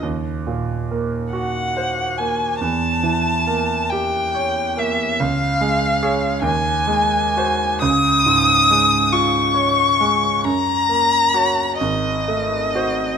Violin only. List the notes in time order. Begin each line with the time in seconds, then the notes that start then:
1.33 F#5
2.18 G#5
2.60 A5
3.90 G5
4.78 E5
5.19 F5
6.44 G#5
7.82 D#6
9.13 C#6
10.44 A#5
11.79 D#5